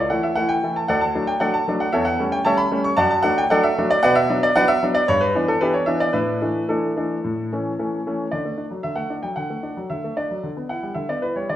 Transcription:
Already playing: D5
0.10 E3 A3 E4 F#5
0.23 E5
0.35 E3 A3 E4 F#5
0.49 G5
0.63 E3 A3 E4
0.76 A5
0.88 D2 A4 D5 F#5
1.01 A5
1.15 F#3 A3 D4
1.27 G5
1.40 F#3 A3 D4 A4 D5 F#5
1.54 A5
1.68 F#3 A3 D4
1.80 F#5
1.93 E2 A4 C#5 E5
2.05 F#5
2.19 G3 A3 C#4
2.32 G5
2.45 G3 A3 C#4 C#5 E5 A5
2.58 B5
2.71 G3 A3 C#4
2.84 C#6
2.97 F#2 D5 F#5 A5
3.11 A5
3.23 F#3 A3 D4 F#5
3.38 G5
3.50 F#3 A3 D4 A4 D5 F#5
3.63 E5
3.78 F#3 A3 D4
3.90 D5
4.03 B2 B4 D5 F#5
4.15 E5
4.29 F#3 B3 D4
4.43 D5
4.56 F#3 B3 D4 B4 D5 F#5
4.68 E5
4.83 F#3 B3 D4
4.95 D5
5.08 G2 C#5
5.21 B4
5.35 E3 B3 D4
5.48 A4
5.61 E3 B3 D4 E4 G4 B4
5.74 C#5
5.86 E3 B3 D4 E5
6.00 D5
6.13 A2 D4 E4 B4
6.42 E3 A3 D4
6.69 E3 A3 D4 E4 A4
6.97 E3 A3 D4
7.24 A2
7.52 E3 A3 C#4
7.79 E3 A3 C#4
8.06 E3 A3 C#4
8.31 D3 D5
8.45 A3
8.58 D4
8.71 F#3
8.83 D3 E5
8.96 A3 F#5
9.10 D4
9.23 F#3 G5
9.36 D3 F#5
9.50 A3
9.63 D4
9.77 F#3
9.90 D3 E5
10.04 A3
10.17 D4 D5
10.31 F#3
10.44 D3
10.57 B3
10.69 E4 F#5
10.83 G3
10.94 D3 E5
11.09 B3 D5
11.22 E4 B4
11.36 G3 C#5
11.49 D3 D5

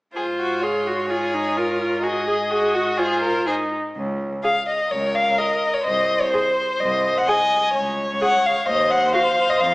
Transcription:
0.14 G#2 F4 G#4 C5
0.39 F#4
0.61 F4 G#4 C#5
0.87 F#4
1.10 F4 G#4
1.34 D#4
1.57 F4 A#4
1.81 F4
2.03 F#4 G#4 D#5
2.27 G#4
2.51 F#4 G#4
2.75 F#4
2.97 F4 G#4 C5
3.21 A#4
3.46 D#4 G#4 C5
3.96 C#2
4.44 G#4 F5
4.68 D#5
4.91 C#2 A#4 C#5
5.15 F5
5.38 A#4 D#5
5.74 C#5
5.85 C2 C5 D#5
6.21 C#5
6.32 G#4 C5
6.80 C2 D#5
7.18 F#5
7.27 G#4 D#5 G#5
7.74 C#2 C#5
8.21 G#4 F#5
8.45 F5
8.66 D#2 C5 D#5
8.91 F#5
9.14 F#4 F5
9.50 D#5
9.60 F2 F5

